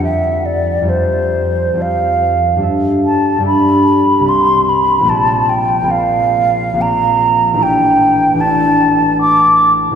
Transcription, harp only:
0.00 0.80 F2 soft
0.00 0.82 G3 soft
0.00 0.84 F4 soft
0.00 0.86 A4 soft
0.00 0.87 C5 soft
0.82 1.72 F2 soft
0.82 1.74 G3 soft
0.82 1.76 F4 soft
0.87 1.78 A4 soft
0.87 1.80 C5 soft
1.74 2.64 F2 soft
1.74 2.56 G3 soft
1.74 2.65 F4 soft
1.79 2.60 A4 soft
1.79 2.67 C5 soft
2.56 3.37 G2 soft
2.56 3.39 G3 soft
2.56 3.40 D4 soft
2.61 3.42 A4 soft
2.61 3.44 E5 soft
3.38 4.27 G2 medium
3.38 4.20 G3 soft
3.38 4.29 D4 soft
3.43 4.29 A4 soft
3.43 4.26 E5 soft
4.20 5.08 C2 soft
4.20 5.09 G3 soft
4.20 5.03 C4 soft
4.25 5.11 B4 soft
4.25 5.12 E5 soft
5.00 5.81 A#1 medium
5.00 5.83 A#3 soft
5.00 5.85 C4 soft
5.06 5.86 A#4 soft
5.06 5.88 D5 soft
5.83 6.72 A#1 medium
5.83 6.75 A#3 soft
5.83 6.76 C4 soft
5.88 6.78 A#4 soft
5.88 6.80 D5 soft
6.73 7.61 A#1 soft
6.73 7.62 A#3 soft
6.78 7.63 C4 soft
6.78 7.63 A#4 soft
6.78 7.59 D5 soft
7.53 8.33 A1 medium
7.53 8.34 D4 soft
7.53 8.37 E4 soft
7.59 8.38 B4 soft
7.59 8.40 D5 soft
8.34 9.90 A1 medium
8.34 9.95 D4 soft
8.34 9.92 E4 soft
8.39 9.95 B4 soft
8.39 9.95 D5 soft
9.91 9.95 A1 medium

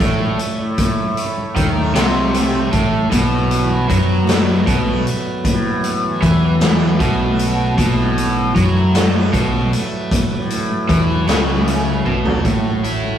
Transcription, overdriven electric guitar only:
0.00 0.38 A2 loud
1.56 1.94 D#3 loud
1.95 2.71 C3 medium
2.72 3.10 A2 medium
3.11 3.88 B2 loud
3.89 4.66 F#3 medium
4.67 5.05 B2 loud
6.22 6.99 E3 loud
7.00 7.76 B2 loud
7.78 8.54 B2 loud
8.56 9.32 F#3 loud
9.33 9.71 B2 loud
10.89 11.26 E3 loud
11.28 12.04 C#3 loud
12.05 12.43 B2 medium
12.45 13.18 A2 medium
12.84 13.18 E4 medium

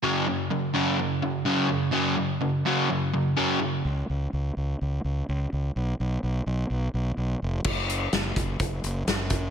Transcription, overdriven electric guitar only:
0.03 0.25 F#2 medium
0.03 0.26 C#3 medium
0.03 0.26 F#3 medium
0.28 0.49 F#2 soft
0.28 0.49 C#3 medium
0.51 0.72 F#2 soft
0.51 0.72 C#3 medium
0.74 0.97 F#2 medium
0.74 0.97 C#3 medium
0.74 0.97 F#3 medium
0.98 1.20 F#2 soft
0.98 1.20 C#3 medium
1.22 1.44 F#2 soft
1.22 1.44 C#3 medium
1.45 1.68 F#2 medium
1.45 1.68 C#3 medium
1.45 1.68 F#3 medium
1.69 1.91 F#2 medium
1.69 1.91 C#3 medium
1.92 2.15 F#2 medium
1.92 2.16 C#3 medium
1.92 2.16 F#3 medium
2.17 2.39 F#2 soft
2.17 2.39 C#3 medium
2.42 2.63 F#2 medium
2.42 2.63 C#3 medium
2.66 2.88 F#2 medium
2.66 2.88 C#3 medium
2.66 2.88 F#3 medium
2.89 3.11 F#2 medium
2.89 3.11 C#3 medium
3.14 3.35 F#2 medium
3.14 3.35 C#3 medium
3.37 3.58 F#2 medium
3.37 3.59 C#3 medium
3.37 3.59 F#3 medium
3.59 3.81 F#2 medium
3.59 3.81 C#3 medium

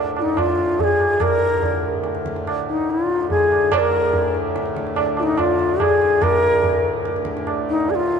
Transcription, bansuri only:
0.19 0.40 D#4 medium
0.19 0.23 F4 medium
0.38 0.82 F4 medium
0.80 1.23 G#4 medium
0.80 0.85 A4 medium
1.22 1.84 A#4 medium
2.70 2.92 D#4 medium
2.91 3.30 F4 medium
3.31 3.75 G#4 medium
3.73 3.79 C#5 medium
3.78 4.35 A#4 loud
5.19 5.24 F4 medium
5.23 5.40 D#4 medium
5.39 5.82 F4 medium
5.81 6.24 G#4 medium
6.23 6.84 A#4 loud
7.70 7.92 D#4 medium
7.90 7.96 G#4 medium
7.95 8.20 F4 medium

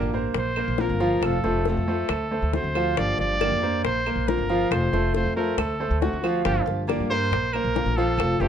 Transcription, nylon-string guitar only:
0.00 0.13 D3 medium
0.00 0.13 F3 medium
0.00 0.14 A#3 medium
0.00 0.13 D4 medium
0.00 0.12 G4 medium
0.13 0.34 A#3 soft
0.13 0.34 G4 soft
0.35 muted nylon-string guitar stroke medium
0.78 1.00 D3 medium
0.78 1.00 A#3 medium
0.78 1.00 C4 medium
0.78 1.00 F4 medium
1.01 1.23 A#3 soft
1.01 1.22 C4 soft
1.01 1.22 F4 soft
1.23 1.44 C3 medium
1.23 1.44 F3 medium
1.23 1.44 A3 medium
1.23 1.44 C4 medium
1.23 1.44 F4 medium
1.46 1.67 A3 soft
1.46 1.67 C4 soft
1.46 1.66 F4 soft
1.67 1.87 C3 medium
1.67 1.88 F3 medium
1.67 1.88 A3 medium
1.67 1.88 C4 medium
1.67 1.87 F4 medium
1.88 2.09 A3 soft
1.88 2.10 C4 soft
1.88 2.09 F4 soft
2.10 muted nylon-string guitar stroke medium
2.53 2.74 D3 medium
2.53 2.75 A3 medium
2.53 2.75 C4 medium
2.53 2.75 F#4 medium
2.76 2.97 A3 soft
2.76 2.97 C4 soft
2.76 2.96 F#4 soft
2.97 3.18 D3 medium
2.97 3.18 F3 medium
2.97 3.18 A#3 medium
2.97 3.18 D4 medium
2.97 3.19 G4 medium
3.20 3.40 A#3 soft
3.20 3.41 D4 soft
3.20 3.40 G4 medium
3.40 3.61 D3 medium
3.40 3.61 F3 medium
3.40 3.62 A#3 medium
3.40 3.62 D4 medium
3.40 3.61 G4 medium
3.63 3.84 D4 soft
3.63 3.83 G4 soft
3.85 muted nylon-string guitar stroke medium
4.27 4.48 D3 medium
4.27 4.49 A#3 medium
4.27 4.49 C4 medium
4.27 4.49 F4 medium
4.50 4.71 A#3 soft
4.50 4.71 C4 soft
4.50 4.70 F4 soft
4.71 4.92 C3 medium
4.71 4.92 F3 medium
4.71 4.92 A3 medium
4.71 4.92 C4 medium
4.71 4.92 F4 medium
4.93 5.14 A3 soft
4.93 5.14 F4 soft
5.15 5.35 C3 medium
5.15 5.36 F3 medium
5.15 5.36 A3 medium
5.15 5.36 C4 medium
5.15 5.35 F4 medium
5.37 5.57 A3 soft
5.37 5.57 C4 soft
5.37 5.57 F4 medium
5.57 muted nylon-string guitar stroke medium
6.01 6.22 D3 medium
6.01 6.23 A3 medium
6.01 6.23 C4 medium
6.01 6.22 F#4 medium
6.23 6.45 A3 soft
6.23 6.45 C4 soft
6.23 6.44 F#4 soft
6.45 6.66 D3 medium
6.45 6.66 F3 medium
6.45 6.66 A#3 medium
6.45 6.67 D4 medium
6.45 6.65 G4 medium
6.66 6.88 A#3 soft
6.66 6.88 D4 soft
6.66 6.88 G4 medium
6.87 7.09 D3 medium
6.87 7.09 F3 medium
6.87 7.10 A#3 medium
6.87 7.10 D4 medium
6.87 7.09 G4 medium
7.10 7.31 A#3 soft
7.10 7.32 D4 soft
7.10 7.31 G4 soft
7.33 muted nylon-string guitar stroke medium
7.74 7.96 D3 medium
7.74 7.96 A#3 medium
7.74 7.97 C4 medium
7.74 7.96 F4 medium
7.97 8.18 A#3 soft
7.97 8.18 C4 soft
7.97 8.18 F4 soft
8.18 8.39 C3 medium
8.18 8.40 F3 medium
8.18 8.40 A3 medium
8.18 8.39 C4 medium
8.18 8.38 F4 medium
8.40 8.48 A3 soft
8.40 8.48 C4 soft
8.40 8.48 F4 medium

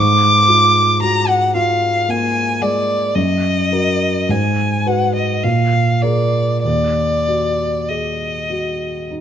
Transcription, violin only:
0.00 1.02 D6 medium
1.03 1.30 A#5 medium
1.28 1.55 F#5 medium
1.56 2.11 F5 medium
2.10 2.63 G#5 medium
2.62 3.16 D5 medium
3.15 4.32 D#5 medium
4.30 4.88 G#5 medium
4.87 5.15 F#5 medium
5.15 5.45 D#5 medium
5.43 6.03 F5 medium
6.02 6.63 D5 medium
6.64 7.90 D5 medium
7.88 9.10 D#5 soft

